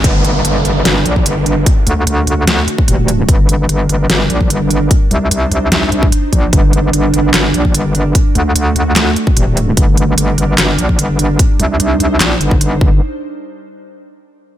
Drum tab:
HH |x-x-x-x-x-x-x-x-|x-x-x-x-x-x-x-x-|x-x-x-x-x-x-x-x-|x-x-x-x-x-x-x-x-|
CP |----------------|----------------|----------------|----------------|
SD |--------o-------|--------o-------|--------o-------|--------o-------|
BD |o----------o----|o----------o----|o----------o----|o----------o--o-|

HH |x-x-x-x-x-x-x-x-|x-x-x-x-x-x-x-x-|x-x-x-x-x-x-x-x-|x-x-x-x-x-x-x---|
CP |--------x-------|--------x-------|--------x-------|--------x-------|
SD |--------o-------|--------o-------|--------o-------|--------o-------|
BD |o----------o----|o----------o----|o----------o----|o----------o--o-|

HH |----------------|
CP |----------------|
SD |----------------|
BD |----------------|